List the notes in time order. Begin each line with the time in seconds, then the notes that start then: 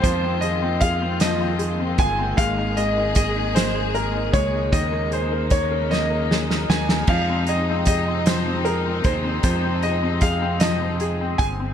Already playing: D#3 F3 G#3 C4 F4 G#4
0.02 F2 F3 A#3 C5, kick, closed hi-hat
0.23 C4
0.41 G#4 D#5, closed hi-hat
0.62 C4
0.80 G#4 F5, kick, closed hi-hat
1.02 C4
1.20 F3 D#5, snare, closed hi-hat
1.40 C4
1.59 G#4, closed hi-hat
1.79 C4
1.98 G1 G#4 G#5, kick, closed hi-hat
2.18 C4
2.37 G#1 G#3 G#4 F5, kick, closed hi-hat
2.58 D#4
2.77 G#3 D#5, closed hi-hat
2.97 D#4
3.15 G#3 D#5, kick, closed hi-hat
3.36 D#4
3.55 G#3 C5, snare, closed hi-hat
3.75 D#4
3.95 G#3 A#4, closed hi-hat
4.14 D#4
4.33 C#2 G#3 C#5, kick, closed hi-hat
4.53 D#4
4.72 D#2 C#3 D#3 D#4 D#5, kick, closed hi-hat
4.92 A#3
5.11 G#4 C5, closed hi-hat
5.32 A#4
5.50 A#3 C#5, kick, closed hi-hat
5.71 A#4
5.90 A#3 D#5, snare
6.10 A#4
6.31 G#4, snare
6.50 A#4, snare
6.69 D#2 A#3 G#5, snare
6.89 A#4, snare
7.07 F2 C3 F3 F5, kick, crash
7.29 C4
7.47 G#4 D#5, closed hi-hat
7.70 C4
7.86 G#4 D#5, kick, closed hi-hat
8.08 C4
8.26 F3 C5, snare, closed hi-hat
8.47 C4
8.65 G#4 A#4, closed hi-hat
8.86 C4
9.04 D#2 G#4 C5, kick, closed hi-hat
9.24 C4
9.43 F2 F3 C5, kick, closed hi-hat
9.63 C4
9.83 G#4 D#5, closed hi-hat
10.02 C4
10.21 G#4 F5, kick, closed hi-hat
10.42 C4
10.60 F3 D#5, snare, closed hi-hat
10.82 C4
11.00 G#4, closed hi-hat
11.21 C4
11.38 G1 G#4 G#5, kick, closed hi-hat
11.60 C4